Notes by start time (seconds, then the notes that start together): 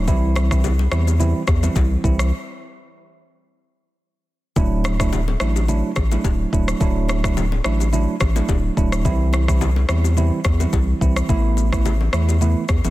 0.07 C2 E3 G3 C4 E4, kick, low conga, shaker
0.36 cross-stick, low bongo, shaker
0.51 E3 G3 C4 E4, kick, cross-stick, shaker
0.64 high bongo, low conga, shaker
0.79 low bongo
0.91 E2 E3 G3 C4 E4, cross-stick, shaker
1.07 high bongo, shaker
1.19 E3 G3 C4 E4, low conga, shaker
1.47 E2, kick, cross-stick, high bongo, shaker
1.63 E3 G3 C4 E4, low bongo, shaker
1.76 C2, kick, high bongo, shaker
2.04 C2 E3 G3 C4 E4, kick, shaker
2.19 cross-stick, shaker
4.56 D1 F#3 A3 D4 E4, kick, low conga, shaker
4.84 cross-stick, low bongo, shaker
5.00 F#3 A3 D4 E4, kick, cross-stick, shaker
5.13 high bongo, low conga, shaker
5.28 low bongo
5.40 A1 F#3 A3 D4 E4, cross-stick, shaker
5.56 high bongo, shaker
5.68 F#3 A3 D4 E4, low conga, shaker
5.96 A1, kick, cross-stick, high bongo, shaker
6.12 F#3 A3 D4 E4, low bongo, shaker
6.24 D1, kick, high bongo, shaker
6.52 D1 F#3 A3 D4 E4, kick, shaker
6.68 cross-stick, shaker
6.80 D1 F#3 A3 D4 E4, kick, low conga, shaker
7.08 cross-stick, low bongo, shaker
7.24 F#3 A3 D4 E4, kick, cross-stick, shaker
7.37 high bongo, low conga, shaker
7.52 low bongo
7.64 A1 F#3 A3 D4 E4, cross-stick, shaker
7.80 high bongo, shaker
7.92 F#3 A3 D4 E4, low conga, shaker
8.20 A1, kick, cross-stick, high bongo, shaker
8.36 F#3 A3 D4 E4, low bongo, shaker
8.49 D1, kick, high bongo, shaker
8.77 D1 F#3 A3 D4 E4, kick, shaker
8.92 cross-stick, shaker
9.05 C2 E3 G3 C4 E4, kick, low conga, shaker
9.33 cross-stick, low bongo, shaker
9.48 E3 G3 C4 E4, kick, cross-stick, shaker
9.61 high bongo, low conga, shaker
9.76 low bongo
9.89 E2 E3 G3 C4 E4, cross-stick, shaker
10.04 high bongo, shaker
10.17 E3 G3 C4 E4, low conga, shaker
10.44 E2, kick, cross-stick, high bongo, shaker
10.60 E3 G3 C4 E4, low bongo, shaker
10.73 C2, kick, high bongo, shaker
11.01 C2 E3 G3 C4 E4, kick, shaker
11.16 cross-stick, shaker
11.29 A1 E3 A3 B3 E4, kick, low conga, shaker
11.57 low bongo, shaker
11.72 E3 A3 B3 E4, kick, cross-stick, shaker
11.86 high bongo, low conga, shaker
12.01 low bongo
12.13 E2 E3 A3 B3 E4, cross-stick, shaker
12.29 high bongo, shaker
12.41 E3 A3 B3 E4, low conga, shaker
12.69 E2, kick, cross-stick, high bongo, shaker
12.84 A1 E3 A3 B3 E4, low bongo, shaker